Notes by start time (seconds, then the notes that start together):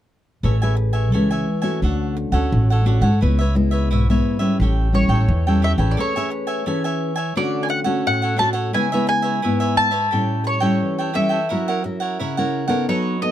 0.43 A1 A3 C#4 G#4 A4 B4 C#5 E5 G#5
0.62 C#4 G#4 B4 C#5 E5 G#5
0.76 muted cavaquinho stroke
0.93 C#5 E5 G#5
1.12 C#2 E3 C#4 G#4 A4 B4 C#5 E5 G#5
1.30 C#5 E5 G#5
1.62 A3 C#4 F#4 C#5 E5 G#5
1.82 D2 D3 D4 A4 C#5 F#5
2.17 muted cavaquinho stroke
2.32 D2 A3 C#4 F#4 A4 C#5 F#5
2.52 A1 A2
2.70 A4 C#5 F#5
2.85 A3 C#4 D4 F#4 A4 C#5 F#5
3.01 G#2 A4 C#5 F#5
3.21 C#2 C#3 G#3 B3 E4 B4 C#5 E5
3.39 B4 C#5 E5
3.55 G#3 B3 E4, muted cavaquinho stroke
3.71 B4 C#5 E5
3.91 B1 G#2 E4 B4 C#5 E5
4.09 G#3 B3 E4 B4 C#5 E5
4.39 G3 C#4 E4 B4 C#5 E5
4.60 A1 A2 G4 A4 C#5 G5
4.93 G3 C#4 E4 C#5, muted cavaquinho stroke
5.09 A1 A4 C#5 G5
5.28 E2 E3
5.47 G3 C#4 E4 A4 C#5 G5
5.62 G4 A4 C#5 E5 G5
5.78 A1 C#4 G#4 A4 B4 C#5 G5
5.91 D5
5.97 A3 A4 C#5 E5 G#5
6.16 C#4 G#4 B4 C#5 E5 G#5
6.30 muted cavaquinho stroke
6.47 C#5 E5 G#5
6.66 E3 C#4 G#4 A4 B4 C#5 E5 G#5
6.84 C#5 E5 G#5
7.16 C#5 E5 G#5
7.36 D3 A3 C#4 D4 F#4 A4 C#5 D5 F#5
7.63 G#5
7.69 F#5, muted cavaquinho stroke
7.84 A3 C#4 F#4 A4 C#5 F#5
8.06 A2 F#5
8.22 A4 C#5 F#5
8.36 A3 C#4 D4 F#4 A4 C#5 F#5 A5
8.53 A4 C#5 F#5
8.73 C#3 G#3 B3 E4 B4 C#5 E5 G#5
8.92 G#3 B3 E4 B4 C#5 E5
9.07 G#5, muted cavaquinho stroke
9.22 B4 C#5 E5
9.42 G#2 G#3 B3 E4 B4 C#5 E5
9.60 B4 C#5 E5
9.77 A5
9.91 B4 C#5 E5
10.11 A2 G3 C#4 E4 G4 A4 C#5 G5
10.44 C#5, muted cavaquinho stroke
10.60 G3 C#4 E4 A4 C#5 G5
10.82 E3
10.98 A4 C#5 G5
11.13 G3 C#4 E4 G4 A4 C#5 E5 G5
11.29 A4 C#5 G5
11.49 F#3 C#4 E4 A#4 C#5 F#5
11.68 A#4 C#5 F#5
11.84 C#4 E4 A#4, muted cavaquinho stroke
12.00 A#4 C#5 F#5
12.19 C#3 E4 A#4 C#5 F#5
12.37 C#4 E4 A#4 C#5 F#5
12.68 B3 D#4 A4 A#4 C#5 F#5
12.89 F#3 D#4 A4 B4 C#5 D#5
13.22 B3 D#4 A4 D#5, muted cavaquinho stroke